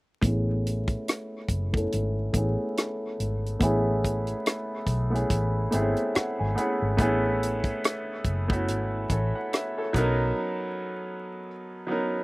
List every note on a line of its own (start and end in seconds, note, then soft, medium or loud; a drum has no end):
0.21 0.95 A1 medium
0.21 1.54 A3 medium
0.21 1.55 B3 medium
0.21 1.55 C#4 medium
0.21 1.56 E4 medium
0.21 kick medium
0.21 closed hi-hat medium
0.26 1.56 G#4 loud
0.67 closed hi-hat medium
0.88 kick medium
0.88 closed hi-hat soft
1.08 cross-stick medium
1.08 closed hi-hat medium
1.49 1.85 F#1 medium
1.49 kick medium
1.49 closed hi-hat medium
1.73 2.27 A3 medium
1.73 2.28 B3 soft
1.73 2.28 C#4 medium
1.73 2.29 E4 medium
1.73 kick medium
1.77 2.29 A4 medium
1.77 closed hi-hat soft
1.92 2.28 G#1 medium
1.92 closed hi-hat medium
2.33 2.55 A1 medium
2.33 3.48 A3 medium
2.33 3.49 B3 medium
2.33 3.49 C#4 medium
2.33 3.50 E4 medium
2.33 kick medium
2.33 closed hi-hat medium
2.37 3.50 G#4 medium
2.77 cross-stick medium
2.77 closed hi-hat medium
3.20 3.55 G#1 medium
3.20 closed hi-hat soft
3.46 closed hi-hat soft
3.59 4.33 A1 medium
3.59 4.92 A3 medium
3.59 4.93 B3 medium
3.59 4.93 C#4 medium
3.59 4.94 E4 medium
3.59 kick medium
3.59 closed hi-hat medium
3.64 4.94 G#4 loud
4.04 kick medium
4.04 closed hi-hat medium
4.27 closed hi-hat soft
4.46 cross-stick medium
4.46 closed hi-hat medium
4.87 5.23 B1 medium
4.87 kick medium
4.87 closed hi-hat soft
5.10 5.65 A3 medium
5.10 5.66 B3 medium
5.10 5.66 C#4 medium
5.10 5.67 E4 medium
5.15 5.67 G#4 medium
5.15 closed hi-hat soft
5.30 5.66 A1 medium
5.30 kick medium
5.30 closed hi-hat medium
5.71 5.93 G#1 medium
5.71 6.48 A3 medium
5.71 6.48 B3 medium
5.71 5.80 C4 soft
5.71 6.49 E4 medium
5.71 6.12 E5 medium
5.71 closed hi-hat medium
5.75 6.50 G#4 medium
5.79 6.52 C#4 medium
5.96 closed hi-hat soft
6.15 6.37 F#5 medium
6.15 muted fingered electric bass stroke soft
6.15 cross-stick medium
6.15 closed hi-hat medium
6.39 6.55 G#1 medium
6.39 6.56 G#5 medium
6.55 6.94 A3 medium
6.55 6.94 B3 medium
6.55 6.95 C#4 medium
6.55 6.95 E4 medium
6.55 6.96 F#5 medium
6.55 closed hi-hat soft
6.59 6.96 G#4 medium
6.82 6.99 G#1 medium
6.97 7.70 A1 medium
6.97 8.30 A3 medium
6.97 8.31 B3 medium
6.97 8.31 C#4 medium
6.97 8.32 E4 medium
6.97 kick medium
6.97 closed hi-hat medium
7.01 8.32 G#4 medium
7.43 closed hi-hat medium
7.64 kick medium
7.64 closed hi-hat soft
7.84 cross-stick loud
7.84 closed hi-hat medium
8.25 8.70 F#1 medium
8.25 kick medium
8.25 closed hi-hat soft
8.48 9.03 A3 medium
8.48 9.04 B3 medium
8.48 9.04 C#4 medium
8.48 9.05 E4 medium
8.48 kick medium
8.53 9.05 F#4 medium
8.53 closed hi-hat soft
8.68 9.05 G#1 medium
8.68 closed hi-hat medium
9.10 9.31 A1 medium
9.10 9.34 A4 soft
9.10 9.34 C#5 medium
9.10 kick medium
9.10 closed hi-hat medium
9.35 9.52 F#5 medium
9.53 9.76 C#5 soft
9.53 9.76 E5 medium
9.53 cross-stick medium
9.53 closed hi-hat medium
9.78 10.18 A4 medium
9.78 10.17 C#5 medium
9.93 10.31 B1 medium
9.93 11.47 F#3 medium
9.93 11.47 B3 medium
9.93 11.48 C#4 medium
9.93 11.48 D#4 medium
9.93 kick medium
9.93 closed hi-hat medium
9.98 11.49 A#4 medium
11.87 12.24 F#3 medium
11.87 12.24 B3 medium
11.87 12.24 C#4 medium
11.87 12.24 D#4 medium
11.91 12.24 A#4 medium